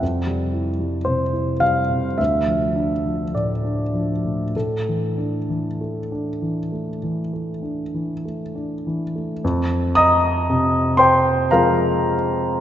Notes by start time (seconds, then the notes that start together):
0.02 F2
0.27 G3
0.53 E4
0.79 G3
1.05 C3 C5
1.33 E4
1.60 G3 F5
1.90 C3
2.18 D2 E5
2.46 F3
2.76 D4
3.06 F3
3.34 A2 D5
3.65 D4
3.94 F3
4.25 A2
4.56 A2 A4
4.89 E3
5.18 D4
5.50 E3
5.81 A3
6.12 D4
6.42 E3
6.72 A3
7.03 E3
7.33 A3
7.63 D4
7.94 E3
8.25 A3
8.55 D4
8.87 E3
9.16 A3
9.44 F2
9.95 D#5 A#5 D#6
10.50 C3
10.97 C5 G5 C6
11.51 F3 G#3 C4 F4 A#4 F5 A#5